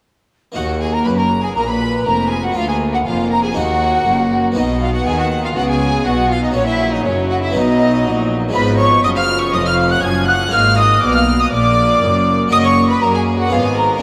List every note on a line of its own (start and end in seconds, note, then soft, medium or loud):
0.52 2.00 A#3 medium
0.52 2.51 D#4 soft
0.52 2.52 F#4 soft
0.52 0.79 F#4 medium
0.56 1.03 D#2 medium
0.56 1.02 D#2 medium
0.56 1.52 A#3 medium
0.56 0.64 F#5 medium
0.56 0.83 F#5 medium
0.81 0.93 G#4 medium
0.81 0.93 G#5 medium
0.81 0.95 G#5 medium
0.93 1.06 A#4 medium
0.93 1.07 A#5 medium
0.93 1.06 A#5 medium
1.05 1.55 F#1 medium
1.05 1.52 F#2 medium
1.05 1.55 F#2 medium
1.05 1.18 B4 medium
1.05 1.17 B5 medium
1.05 1.11 B5 medium
1.18 1.26 A#4 medium
1.18 1.43 A#5 medium
1.43 1.56 G#4 medium
1.43 1.49 G#5 medium
1.43 1.56 G#5 medium
1.55 2.05 A#1 medium
1.55 2.02 A#2 medium
1.55 2.05 A#2 medium
1.55 2.04 A#3 medium
1.55 1.68 A#4 medium
1.55 1.61 A#5 medium
1.55 1.68 A#5 medium
1.67 2.05 B4 medium
1.67 2.05 B5 medium
1.67 2.06 B5 loud
2.06 2.55 F1 medium
2.06 2.52 F2 medium
2.06 2.55 F2 medium
2.06 2.55 A#3 medium
2.06 2.31 A#4 medium
2.06 2.31 A#5 medium
2.31 2.44 G#4 medium
2.31 2.44 G#5 loud
2.31 2.37 G#5 medium
2.44 2.56 F#4 medium
2.44 2.58 F#5 medium
2.44 2.56 F#5 medium
2.52 3.05 D2 medium
2.52 3.51 A#3 medium
2.52 3.05 A#3 medium
2.52 3.52 F4 medium
2.52 2.69 F4 medium
2.52 2.68 F5 medium
2.56 3.05 D2 medium
2.56 3.02 D2 medium
2.56 2.69 F5 loud
2.68 2.76 G#4 medium
2.68 2.95 G#5 medium
2.68 2.77 G#5 medium
2.93 2.98 F#4 medium
2.93 3.07 F#5 medium
2.93 2.99 F#5 medium
3.05 3.55 F1 medium
3.05 3.55 F2 medium
3.05 3.53 F2 medium
3.05 3.56 A#3 medium
3.05 3.30 F4 medium
3.05 3.31 F5 medium
3.30 3.43 A#4 medium
3.30 3.43 A#5 medium
3.30 3.44 A#5 medium
3.43 3.48 G#4 medium
3.43 3.56 G#5 medium
3.52 4.51 A#3 medium
3.52 4.52 D#4 medium
3.52 4.53 F#4 medium
3.52 4.41 F#4 medium
3.52 4.44 F#5 medium
3.56 4.06 D#2 medium
3.56 4.03 D#2 medium
3.56 4.54 A#3 medium
3.56 4.42 F#5 medium
4.06 4.55 F#1 medium
4.06 4.52 F#2 medium
4.06 4.55 F#2 medium
4.52 6.49 B3 medium
4.52 6.50 D#4 medium
4.52 4.64 D#4 medium
4.52 6.51 F#4 medium
4.52 4.79 D#5 medium
4.56 5.05 B1 medium
4.56 5.05 B2 medium
4.56 5.02 B2 medium
4.56 5.55 B3 medium
4.56 4.80 D#5 medium
4.81 4.93 F4 medium
4.81 4.93 F5 medium
4.81 4.94 F5 loud
4.94 5.06 F#4 medium
4.94 5.07 F#5 medium
4.94 5.06 F#5 medium
5.06 5.55 D#2 medium
5.06 5.55 D#3 medium
5.06 5.52 D#3 medium
5.06 5.18 G#4 medium
5.06 5.18 G#5 medium
5.06 5.19 G#5 medium
5.19 5.27 F#4 medium
5.19 5.43 F#5 loud
5.19 5.43 F#5 medium
5.43 5.56 F4 medium
5.43 5.49 F5 medium
5.56 6.05 C#2 medium
5.56 6.05 C#3 medium
5.56 6.02 C#3 medium
5.56 6.05 B3 medium
5.56 5.69 F#4 medium
5.56 5.68 F#5 loud
5.56 5.62 F#5 medium
5.68 6.05 G#4 medium
5.68 6.05 G#5 loud
5.68 6.05 G#5 medium
6.05 6.54 B1 medium
6.05 6.51 B2 medium
6.05 6.55 B2 medium
6.05 6.54 B3 medium
6.05 6.30 F#4 medium
6.05 6.30 F#5 loud
6.05 6.33 F#5 medium
6.30 6.43 F4 medium
6.30 6.43 F5 medium
6.30 6.45 F5 medium
6.42 6.55 D#4 medium
6.42 6.48 D#5 medium
6.42 6.57 D#5 medium
6.51 7.50 C#4 medium
6.51 6.67 C#4 medium
6.51 7.50 F#4 medium
6.51 6.67 C#5 loud
6.55 7.04 A#1 medium
6.55 7.01 A#2 medium
6.55 7.04 A#2 medium
6.55 7.04 F#3 medium
6.55 6.68 C#5 medium
6.67 6.92 E4 medium
6.67 6.92 E5 medium
6.67 6.93 E5 medium
6.92 7.05 D#4 medium
6.92 7.05 D#5 medium
6.92 7.07 D#5 medium
7.05 7.55 F#1 medium
7.05 7.51 F#2 medium
7.05 7.55 F#2 medium
7.05 7.54 F#3 medium
7.05 7.30 C#4 medium
7.05 7.29 C#5 medium
7.05 7.30 C#5 medium
7.29 7.42 F#4 medium
7.29 7.35 F#5 medium
7.29 7.36 F#5 medium
7.42 7.54 E4 medium
7.42 7.55 E5 medium
7.51 8.49 B3 medium
7.51 8.50 D#4 medium
7.51 8.41 D#4 medium
7.51 8.51 F#4 medium
7.51 8.42 D#5 loud
7.55 8.05 B1 medium
7.55 8.01 B2 medium
7.55 8.05 B2 medium
7.55 8.52 F#3 medium
7.55 8.29 D#5 loud
8.05 8.54 A#1 medium
8.05 8.50 A#2 medium
8.05 8.55 A#2 medium
8.49 9.00 G#3 medium
8.49 9.00 B3 medium
8.49 9.01 D#4 medium
8.53 9.03 G#1 medium
8.53 9.03 G#2 medium
8.53 9.00 G#2 medium
8.53 9.03 F3 medium
8.53 10.48 F4 medium
8.53 8.77 B4 medium
8.53 8.77 B5 loud
8.53 8.61 B5 medium
8.79 9.03 C#5 medium
8.79 9.03 C#6 loud
9.03 9.53 F#1 medium
9.03 9.53 F#2 medium
9.03 9.50 F#2 medium
9.03 9.53 F3 medium
9.03 9.09 D#5 medium
9.03 9.09 D#6 loud
9.03 9.09 D#6 medium
9.16 9.24 F5 medium
9.16 9.41 F6 loud
9.16 9.42 F6 medium
9.41 9.53 C#5 medium
9.41 9.55 C#6 medium
9.41 9.54 C#6 loud
9.54 10.03 F1 medium
9.54 10.03 F2 medium
9.54 10.00 F2 medium
9.54 10.02 F3 medium
9.54 9.66 D#5 medium
9.54 9.68 D#6 medium
9.54 9.66 D#6 loud
9.66 9.91 F5 loud
9.66 9.74 F6 loud
9.66 9.92 F6 medium
9.91 10.03 F#5 medium
9.91 10.03 F#6 medium
9.91 10.03 F#6 loud
10.03 10.52 F#1 medium
10.03 10.49 F#2 medium
10.03 10.52 F#2 medium
10.03 10.52 F3 medium
10.03 10.28 G#5 loud
10.03 10.09 G#6 medium
10.03 10.28 G#6 loud
10.28 10.53 F#5 medium
10.28 10.52 F#6 loud
10.28 10.34 F#6 loud
10.47 10.98 G#3 medium
10.47 10.99 A#3 medium
10.47 12.47 F4 medium
10.52 11.02 G#1 medium
10.52 11.02 G#2 medium
10.52 10.99 G#2 medium
10.52 11.01 A#3 medium
10.52 12.47 A#4 medium
10.52 10.78 F5 loud
10.52 10.76 F6 loud
10.52 10.78 F6 loud
10.77 11.03 D#5 medium
10.77 11.02 D#6 loud
10.77 11.03 D#6 loud
11.02 11.52 B1 medium
11.02 11.52 B2 medium
11.02 11.49 B2 medium
11.02 11.51 A#3 medium
11.02 11.16 D5 loud
11.02 11.14 D6 loud
11.02 11.15 D6 loud
11.14 11.24 F5 medium
11.14 11.20 F6 medium
11.14 11.40 F6 loud
11.39 11.52 D#5 medium
11.39 11.45 D#6 medium
11.39 11.52 D#6 loud
11.52 12.01 A#1 medium
11.52 11.98 A#2 medium
11.52 12.01 A#2 medium
11.52 12.50 A#3 medium
11.52 12.38 D5 loud
11.52 12.37 D6 loud
11.52 12.38 D6 loud
12.02 12.51 F#1 medium
12.02 12.48 F#2 medium
12.02 12.52 F#2 medium
12.48 12.98 F#1 medium
12.48 13.47 A#3 medium
12.48 12.98 A#3 medium
12.48 13.47 F#4 medium
12.48 13.48 A#4 medium
12.52 12.98 F#2 medium
12.52 12.99 F#2 medium
12.52 12.64 D#5 medium
12.52 12.58 D#6 loud
12.52 12.57 D#6 loud
12.64 12.90 C#5 medium
12.64 12.89 C#6 loud
12.64 12.89 C#6 medium
12.90 13.02 B4 medium
12.90 13.03 B5 medium
12.90 13.02 B5 medium
13.02 13.51 F#2 medium
13.02 13.48 F#3 medium
13.02 13.51 F#3 medium
13.02 13.51 A#3 medium
13.02 13.14 A#4 medium
13.02 13.07 A#5 medium
13.02 13.14 A#5 loud
13.14 13.39 G#4 medium
13.14 13.22 G#5 loud
13.14 13.20 G#5 medium
13.39 13.52 F#4 medium
13.39 13.51 F#5 medium
13.39 13.52 F#5 loud
13.47 13.98 B3 medium
13.47 13.99 F4 medium
13.47 14.00 G#4 medium
13.51 14.02 G#1 medium
13.51 13.98 G#2 medium
13.51 14.02 G#2 medium
13.51 14.02 B3 medium
13.51 13.64 F4 medium
13.51 13.57 F5 medium
13.51 13.64 F5 loud
13.64 13.77 G#4 medium
13.64 13.76 G#5 medium
13.64 13.77 G#5 loud
13.76 14.02 A#4 medium
13.76 14.02 A#5 medium
13.76 14.02 A#5 loud
13.98 14.02 A#3 soft
13.98 14.02 D4 medium